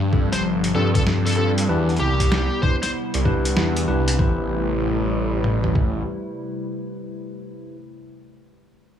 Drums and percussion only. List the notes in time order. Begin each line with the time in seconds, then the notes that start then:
0.13 kick
0.33 snare, closed hi-hat
0.64 closed hi-hat
0.95 kick, closed hi-hat
1.07 snare
1.27 closed hi-hat
1.29 closed hi-hat
1.32 closed hi-hat
1.35 closed hi-hat
1.58 closed hi-hat
1.89 closed hi-hat
1.97 closed hi-hat
2.20 kick, closed hi-hat
2.32 snare
2.63 kick
2.83 snare, closed hi-hat
3.14 closed hi-hat
3.25 kick
3.45 closed hi-hat
3.57 snare
3.77 closed hi-hat
4.08 closed hi-hat
4.19 kick
5.44 mid tom
5.64 floor tom
5.75 kick